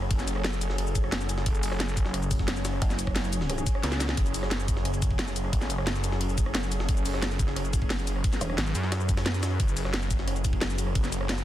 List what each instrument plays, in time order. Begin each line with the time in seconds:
Already playing: synth drone F#3 C#4 G#4 A4
0.02 cross-stick
0.11 detuned saw bass F#1, kick, closed hi-hat, ride
0.19 snare, cabasa
0.28 closed hi-hat, ride, cabasa
0.36 cross-stick
0.44 snare, closed hi-hat, ride
0.53 cabasa
0.61 closed hi-hat, ride, cabasa
0.70 snare
0.78 closed hi-hat, ride
0.87 cabasa
0.95 kick, closed hi-hat, ride, cabasa
1.04 cross-stick
1.12 snare, closed hi-hat, ride
1.21 cabasa
1.29 closed hi-hat, ride, cabasa
1.38 snare
1.46 detuned saw bass F#1, synth drone C#5, kick, closed hi-hat, ride
1.55 ride, cabasa
1.63 closed hi-hat, open hi-hat, cabasa
1.72 cross-stick, snare
1.80 snare, closed hi-hat, ride
1.89 cabasa
1.97 kick, closed hi-hat, ride, cabasa
2.06 snare
2.14 cross-stick, closed hi-hat, ride
2.22 ride, cabasa
2.31 kick, closed hi-hat, open hi-hat, cabasa
2.39 kick, snare
2.48 snare, closed hi-hat, ride
2.56 cabasa
2.65 snare, closed hi-hat, ride, cabasa
2.73 cross-stick
2.82 wobble bass F#1, kick, closed hi-hat, ride
2.90 snare, cabasa
2.99 closed hi-hat, ride, cabasa
3.07 kick, cross-stick
3.16 snare, closed hi-hat, ride
3.24 cabasa
3.33 closed hi-hat, ride, cabasa
3.41 snare
3.50 cross-stick, closed hi-hat, ride
3.58 cross-stick, ride, cabasa
3.67 kick, closed hi-hat, ride, cabasa
3.75 cross-stick
3.83 wobble bass C#2, snare, closed hi-hat, ride
3.92 snare, cabasa
4.00 snare, closed hi-hat, ride, cabasa
4.09 snare
4.17 detuned saw bass F#1, synth drone A4, kick, closed hi-hat, ride
4.26 ride, cabasa
4.34 closed hi-hat, open hi-hat, cabasa
4.43 cross-stick, snare
4.51 snare, closed hi-hat, ride
4.60 cabasa
4.68 kick, closed hi-hat, ride, cabasa
4.77 snare
4.85 cross-stick, closed hi-hat, ride
4.94 ride, cabasa
5.02 kick, closed hi-hat, ride, cabasa
5.11 kick
5.19 snare, closed hi-hat, ride
5.28 cabasa
5.36 closed hi-hat, ride, cabasa
5.44 cross-stick
5.53 detuned saw bass F#1, kick, closed hi-hat, ride
5.61 snare, cabasa
5.70 closed hi-hat, ride, cabasa
5.78 cross-stick
5.87 snare, closed hi-hat, ride
5.95 cabasa
6.04 closed hi-hat, ride, cabasa
6.12 snare
6.21 closed hi-hat, ride
6.29 cabasa
6.38 kick, closed hi-hat, ride, cabasa
6.46 cross-stick
6.55 snare, closed hi-hat, ride
6.63 cabasa
6.72 closed hi-hat, ride, cabasa
6.80 snare
6.89 detuned saw bass F#1, synth drone B4, kick, closed hi-hat, ride
6.97 ride, cabasa
7.06 closed hi-hat, open hi-hat, cabasa
7.14 cross-stick, snare
7.22 snare, closed hi-hat, ride
7.31 cabasa
7.39 kick, closed hi-hat, ride, cabasa
7.48 snare
7.56 cross-stick, closed hi-hat, ride
7.65 ride, cabasa
7.73 kick, closed hi-hat, ride, cabasa
7.82 kick
7.90 snare, closed hi-hat, ride
7.99 cabasa
8.07 closed hi-hat, ride, cabasa
8.16 cross-stick
8.24 kick, closed hi-hat, ride
8.33 snare, cabasa
8.41 wobble bass E1, closed hi-hat, ride, cabasa
8.50 cross-stick
8.58 detuned saw bass G#1, snare, closed hi-hat, ride
8.67 cabasa
8.75 detuned saw bass F#2, closed hi-hat, ride, cabasa
8.84 snare
8.92 snare, closed hi-hat, ride
9.00 cross-stick, cabasa
9.09 kick, closed hi-hat, ride, cabasa
9.17 cross-stick, snare, ride
9.26 snare, closed hi-hat
9.34 ride, cabasa
9.43 snare, closed hi-hat, ride, cabasa
9.60 detuned saw bass F#1, synth drone A4, kick, closed hi-hat, ride
9.68 ride, cabasa
9.77 closed hi-hat, open hi-hat, cabasa
9.85 cross-stick, snare
9.94 snare, closed hi-hat, ride
10.02 cabasa
10.11 kick, closed hi-hat, ride, cabasa
10.19 snare
10.28 cross-stick, closed hi-hat, ride
10.36 ride, cabasa
10.44 kick, closed hi-hat, ride, cabasa
10.53 kick
10.61 snare, closed hi-hat, ride
10.70 cabasa
10.78 closed hi-hat, ride, cabasa
10.87 cross-stick
10.95 detuned saw bass F#1, kick, closed hi-hat, ride
11.04 snare, cabasa
11.12 closed hi-hat, ride, cabasa
11.21 cross-stick
11.29 snare, closed hi-hat, ride
11.38 cabasa